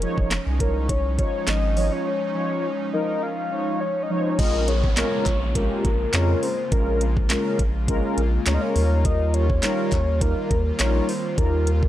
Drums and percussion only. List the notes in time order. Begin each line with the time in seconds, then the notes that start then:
0.02 closed hi-hat
0.18 kick
0.31 snare, clap, closed hi-hat
0.60 kick, closed hi-hat
0.89 kick, closed hi-hat
1.19 kick, closed hi-hat
1.47 snare, clap, closed hi-hat
1.77 open hi-hat
4.39 kick, closed hi-hat, crash
4.68 closed hi-hat
4.84 kick
4.97 snare, clap, closed hi-hat
5.26 kick, clap, closed hi-hat
5.55 kick, closed hi-hat
5.85 kick, closed hi-hat
6.13 snare, clap, closed hi-hat
6.43 open hi-hat
6.72 kick, closed hi-hat
7.01 closed hi-hat
7.17 kick
7.30 snare, clap, closed hi-hat
7.59 kick, closed hi-hat
7.88 kick, closed hi-hat
8.18 closed hi-hat
8.46 snare, clap, closed hi-hat
8.76 open hi-hat
9.05 kick, closed hi-hat
9.34 closed hi-hat
9.50 kick
9.63 snare, clap, closed hi-hat
9.92 kick, clap, closed hi-hat
10.21 kick, closed hi-hat
10.51 kick, closed hi-hat
10.79 snare, clap, closed hi-hat
11.09 open hi-hat
11.38 kick, closed hi-hat
11.67 closed hi-hat
11.83 kick